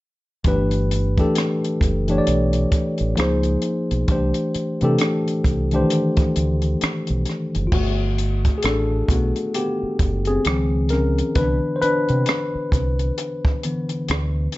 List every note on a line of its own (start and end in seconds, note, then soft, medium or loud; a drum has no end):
0.44 1.20 G1 medium
0.44 1.13 E3 medium
0.44 1.13 A3 medium
0.44 1.13 D4 medium
0.44 1.14 G4 medium
0.44 1.14 B4 medium
0.44 kick medium
0.44 closed hi-hat medium
0.71 closed hi-hat soft
0.91 closed hi-hat medium
1.17 2.02 E3 medium
1.17 2.02 A3 medium
1.17 2.03 D4 medium
1.17 2.03 G4 medium
1.17 2.04 A4 medium
1.17 kick medium
1.17 closed hi-hat soft
1.35 cross-stick medium
1.35 closed hi-hat medium
1.64 closed hi-hat soft
1.81 2.19 F#1 medium
1.81 kick medium
1.81 closed hi-hat medium
2.08 3.17 E3 medium
2.08 3.18 A3 medium
2.08 3.18 D4 medium
2.08 3.18 G4 medium
2.08 2.15 C#5 medium
2.08 closed hi-hat soft
2.18 3.22 D5 medium
2.27 2.65 B1 medium
2.27 closed hi-hat medium
2.53 closed hi-hat soft
2.72 kick medium
2.72 closed hi-hat medium
2.98 3.15 A1 medium
2.98 closed hi-hat soft
3.17 3.56 C#2 medium
3.17 4.04 F3 medium
3.17 4.04 A#3 medium
3.17 4.05 D#4 medium
3.17 4.05 G#4 medium
3.17 4.05 C5 medium
3.17 cross-stick medium
3.17 closed hi-hat medium
3.43 closed hi-hat soft
3.62 closed hi-hat medium
3.91 4.06 B1 medium
3.91 closed hi-hat soft
4.08 4.31 C2 medium
4.08 4.76 E3 medium
4.08 4.77 A3 medium
4.08 4.77 D4 medium
4.08 4.77 G4 medium
4.08 4.78 C5 medium
4.08 kick medium
4.08 closed hi-hat medium
4.34 closed hi-hat soft
4.55 muted fingered electric bass stroke soft
4.55 closed hi-hat medium
4.81 4.97 C3 medium
4.81 5.66 E3 medium
4.81 5.66 A3 medium
4.81 5.66 D4 medium
4.81 5.67 G4 medium
4.81 5.67 A4 medium
4.81 closed hi-hat soft
4.99 cross-stick medium
4.99 closed hi-hat medium
5.28 closed hi-hat soft
5.44 5.83 C2 medium
5.44 kick medium
5.44 closed hi-hat medium
5.71 5.77 D#3 medium
5.71 7.41 A3 medium
5.71 7.42 D4 medium
5.71 7.42 G4 medium
5.71 closed hi-hat soft
5.76 7.44 E3 medium
5.76 7.43 C5 medium
5.90 closed hi-hat medium
6.17 muted fingered electric bass stroke soft
6.17 kick medium
6.17 closed hi-hat soft
6.36 6.74 D2 medium
6.36 closed hi-hat medium
6.62 closed hi-hat soft
6.81 muted fingered electric bass stroke soft
6.81 cross-stick medium
6.81 closed hi-hat medium
7.07 7.24 B1 medium
7.07 closed hi-hat soft
7.26 cross-stick soft
7.26 closed hi-hat medium
7.55 7.70 F#1 medium
7.55 closed hi-hat soft
7.67 7.72 F4 soft
7.72 8.48 G1 medium
7.72 8.55 A3 medium
7.72 8.54 F#4 medium
7.72 kick medium
7.72 crash medium
8.18 closed hi-hat medium
8.45 kick medium
8.45 closed hi-hat soft
8.58 8.63 G#4 medium
8.63 9.01 A1 medium
8.63 9.51 D4 medium
8.63 9.50 A4 medium
8.63 cross-stick medium
8.63 closed hi-hat medium
9.08 9.32 B1 medium
9.08 10.42 A3 soft
9.08 9.56 B3 medium
9.08 10.41 F#4 soft
9.08 kick medium
9.08 closed hi-hat medium
9.36 closed hi-hat soft
9.54 10.24 B3 medium
9.54 10.29 G4 medium
9.54 closed hi-hat medium
9.83 muted fingered electric bass stroke soft
9.99 10.37 F#1 medium
9.99 kick medium
9.99 closed hi-hat medium
10.25 10.87 G#4 medium
10.25 closed hi-hat soft
10.30 10.46 C4 medium
10.45 11.21 C#2 medium
10.45 11.32 D#3 soft
10.45 11.33 F3 soft
10.45 11.33 C4 medium
10.45 cross-stick medium
10.45 closed hi-hat medium
10.89 11.34 C#4 medium
10.89 11.37 A#4 medium
10.89 cross-stick soft
10.89 closed hi-hat medium
11.18 closed hi-hat soft
11.35 11.59 C2 loud
11.35 13.63 D3 soft
11.35 13.64 E3 soft
11.35 13.64 B3 soft
11.35 11.74 D4 medium
11.35 11.77 B4 medium
11.35 kick loud
11.35 closed hi-hat medium
11.76 11.81 C5 medium
11.82 13.60 D4 medium
11.82 13.59 B4 medium
11.82 muted fingered electric bass stroke soft
11.82 closed hi-hat medium
12.09 12.24 C3 medium
12.09 closed hi-hat soft
12.26 cross-stick medium
12.26 closed hi-hat medium
12.55 muted fingered electric bass stroke soft
12.72 13.10 C2 medium
12.72 kick medium
12.72 closed hi-hat medium
12.99 closed hi-hat soft
13.18 closed hi-hat medium
13.45 kick medium
13.63 14.05 D3 soft
13.63 14.05 E3 soft
13.63 14.05 B3 soft
13.63 closed hi-hat medium
13.89 closed hi-hat soft
14.08 14.47 D2 medium
14.08 cross-stick loud
14.08 closed hi-hat medium
14.52 closed hi-hat medium